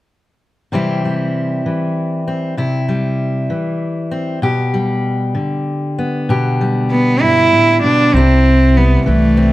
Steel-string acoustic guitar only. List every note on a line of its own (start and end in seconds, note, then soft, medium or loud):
0.72 1.65 C3 medium
0.72 1.65 E3 soft
0.72 1.05 G3 soft
0.72 2.26 C4 soft
0.72 2.57 E4 medium
1.05 2.88 G3 soft
1.66 2.54 E3 soft
2.28 2.54 C4 soft
2.57 3.50 C3 medium
2.57 4.43 E4 medium
2.88 4.73 G3 soft
3.50 4.39 E3 soft
4.11 4.39 C4 soft
4.42 5.35 B2 medium
4.42 6.30 G4 medium
4.74 6.59 G3 soft
5.35 8.13 D3 medium
5.99 8.14 B3 soft
6.29 7.52 B2 medium
6.29 8.11 G4 medium
6.61 8.76 G3 soft
7.21 7.52 G2 medium
7.53 7.83 A2 medium
7.84 8.14 B2 medium
8.15 9.07 C3 medium
8.15 9.53 E4 medium
8.77 9.53 G3 soft
9.06 9.53 E3 medium
9.37 9.53 C4 medium